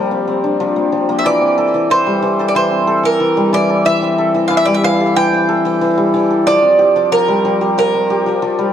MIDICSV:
0, 0, Header, 1, 3, 480
1, 0, Start_track
1, 0, Tempo, 652174
1, 923, Time_signature, 4, 2, 24, 8
1, 6425, End_track
2, 0, Start_track
2, 0, Title_t, "Mandolin"
2, 0, Program_c, 0, 25
2, 0, Note_on_c, 0, 70, 73
2, 181, Note_off_c, 0, 70, 0
2, 873, Note_on_c, 0, 76, 68
2, 924, Note_off_c, 0, 76, 0
2, 926, Note_on_c, 0, 74, 88
2, 1403, Note_off_c, 0, 74, 0
2, 1406, Note_on_c, 0, 72, 89
2, 1826, Note_off_c, 0, 72, 0
2, 1828, Note_on_c, 0, 74, 69
2, 1881, Note_off_c, 0, 74, 0
2, 1885, Note_on_c, 0, 72, 80
2, 2244, Note_off_c, 0, 72, 0
2, 2247, Note_on_c, 0, 70, 85
2, 2603, Note_off_c, 0, 70, 0
2, 2606, Note_on_c, 0, 74, 92
2, 2837, Note_off_c, 0, 74, 0
2, 2840, Note_on_c, 0, 76, 100
2, 3295, Note_on_c, 0, 77, 82
2, 3307, Note_off_c, 0, 76, 0
2, 3361, Note_off_c, 0, 77, 0
2, 3364, Note_on_c, 0, 76, 86
2, 3426, Note_on_c, 0, 74, 84
2, 3430, Note_off_c, 0, 76, 0
2, 3491, Note_on_c, 0, 76, 80
2, 3494, Note_off_c, 0, 74, 0
2, 3561, Note_off_c, 0, 76, 0
2, 3565, Note_on_c, 0, 77, 102
2, 3798, Note_off_c, 0, 77, 0
2, 3801, Note_on_c, 0, 79, 102
2, 4252, Note_off_c, 0, 79, 0
2, 4760, Note_on_c, 0, 74, 103
2, 5239, Note_off_c, 0, 74, 0
2, 5242, Note_on_c, 0, 70, 99
2, 5722, Note_off_c, 0, 70, 0
2, 5731, Note_on_c, 0, 70, 90
2, 6425, Note_off_c, 0, 70, 0
2, 6425, End_track
3, 0, Start_track
3, 0, Title_t, "Hammered dulcimer"
3, 0, Program_c, 1, 15
3, 0, Note_on_c, 1, 53, 100
3, 0, Note_on_c, 1, 55, 100
3, 0, Note_on_c, 1, 58, 82
3, 0, Note_on_c, 1, 60, 76
3, 0, Note_on_c, 1, 67, 77
3, 78, Note_off_c, 1, 60, 0
3, 81, Note_on_c, 1, 60, 66
3, 200, Note_off_c, 1, 60, 0
3, 203, Note_on_c, 1, 60, 73
3, 323, Note_on_c, 1, 62, 73
3, 433, Note_off_c, 1, 53, 0
3, 442, Note_on_c, 1, 53, 95
3, 558, Note_off_c, 1, 58, 0
3, 560, Note_on_c, 1, 58, 69
3, 670, Note_off_c, 1, 53, 0
3, 679, Note_on_c, 1, 53, 74
3, 798, Note_off_c, 1, 58, 0
3, 801, Note_on_c, 1, 58, 96
3, 921, Note_on_c, 1, 52, 107
3, 960, Note_off_c, 1, 53, 0
3, 960, Note_off_c, 1, 55, 0
3, 1036, Note_off_c, 1, 60, 0
3, 1039, Note_on_c, 1, 60, 70
3, 1160, Note_on_c, 1, 69, 96
3, 1205, Note_off_c, 1, 58, 0
3, 1271, Note_off_c, 1, 52, 0
3, 1280, Note_on_c, 1, 52, 67
3, 1390, Note_off_c, 1, 52, 0
3, 1399, Note_on_c, 1, 52, 95
3, 1520, Note_on_c, 1, 55, 94
3, 1628, Note_off_c, 1, 52, 0
3, 1637, Note_on_c, 1, 52, 93
3, 1758, Note_off_c, 1, 69, 0
3, 1761, Note_on_c, 1, 69, 80
3, 1867, Note_off_c, 1, 52, 0
3, 1876, Note_on_c, 1, 52, 101
3, 1992, Note_off_c, 1, 60, 0
3, 1995, Note_on_c, 1, 60, 68
3, 2111, Note_off_c, 1, 69, 0
3, 2114, Note_on_c, 1, 69, 95
3, 2153, Note_off_c, 1, 67, 0
3, 2223, Note_off_c, 1, 52, 0
3, 2232, Note_on_c, 1, 52, 72
3, 2346, Note_off_c, 1, 52, 0
3, 2355, Note_on_c, 1, 52, 86
3, 2471, Note_off_c, 1, 55, 0
3, 2480, Note_on_c, 1, 55, 97
3, 2587, Note_off_c, 1, 52, 0
3, 2596, Note_on_c, 1, 52, 99
3, 2716, Note_off_c, 1, 69, 0
3, 2719, Note_on_c, 1, 69, 72
3, 2825, Note_off_c, 1, 52, 0
3, 2834, Note_on_c, 1, 52, 104
3, 2956, Note_off_c, 1, 60, 0
3, 2959, Note_on_c, 1, 60, 73
3, 3069, Note_off_c, 1, 62, 0
3, 3075, Note_off_c, 1, 69, 0
3, 3078, Note_on_c, 1, 69, 92
3, 3187, Note_off_c, 1, 52, 0
3, 3196, Note_on_c, 1, 52, 75
3, 3306, Note_off_c, 1, 52, 0
3, 3315, Note_on_c, 1, 52, 107
3, 3429, Note_off_c, 1, 55, 0
3, 3438, Note_on_c, 1, 55, 104
3, 3548, Note_off_c, 1, 52, 0
3, 3557, Note_on_c, 1, 52, 101
3, 3679, Note_off_c, 1, 69, 0
3, 3682, Note_on_c, 1, 69, 77
3, 3791, Note_off_c, 1, 52, 0
3, 3800, Note_on_c, 1, 52, 100
3, 3917, Note_off_c, 1, 60, 0
3, 3920, Note_on_c, 1, 60, 66
3, 4035, Note_off_c, 1, 69, 0
3, 4038, Note_on_c, 1, 69, 105
3, 4148, Note_off_c, 1, 52, 0
3, 4157, Note_on_c, 1, 52, 73
3, 4269, Note_off_c, 1, 52, 0
3, 4278, Note_on_c, 1, 52, 92
3, 4389, Note_off_c, 1, 55, 0
3, 4398, Note_on_c, 1, 55, 99
3, 4508, Note_off_c, 1, 52, 0
3, 4517, Note_on_c, 1, 52, 97
3, 4637, Note_off_c, 1, 69, 0
3, 4640, Note_on_c, 1, 69, 68
3, 4759, Note_on_c, 1, 53, 109
3, 4800, Note_off_c, 1, 52, 0
3, 4800, Note_off_c, 1, 55, 0
3, 4874, Note_off_c, 1, 60, 0
3, 4877, Note_on_c, 1, 60, 76
3, 4996, Note_on_c, 1, 67, 97
3, 5113, Note_off_c, 1, 53, 0
3, 5122, Note_on_c, 1, 53, 76
3, 5230, Note_off_c, 1, 53, 0
3, 5238, Note_on_c, 1, 53, 99
3, 5358, Note_on_c, 1, 55, 100
3, 5473, Note_off_c, 1, 53, 0
3, 5482, Note_on_c, 1, 53, 99
3, 5599, Note_off_c, 1, 67, 0
3, 5602, Note_on_c, 1, 67, 82
3, 5715, Note_off_c, 1, 53, 0
3, 5724, Note_on_c, 1, 53, 103
3, 5842, Note_off_c, 1, 60, 0
3, 5845, Note_on_c, 1, 60, 68
3, 5960, Note_off_c, 1, 67, 0
3, 5962, Note_on_c, 1, 67, 102
3, 6072, Note_off_c, 1, 53, 0
3, 6081, Note_on_c, 1, 53, 69
3, 6189, Note_off_c, 1, 53, 0
3, 6198, Note_on_c, 1, 53, 93
3, 6311, Note_off_c, 1, 55, 0
3, 6320, Note_on_c, 1, 55, 93
3, 6425, Note_off_c, 1, 53, 0
3, 6425, Note_off_c, 1, 55, 0
3, 6425, Note_off_c, 1, 60, 0
3, 6425, Note_off_c, 1, 67, 0
3, 6425, Note_off_c, 1, 69, 0
3, 6425, End_track
0, 0, End_of_file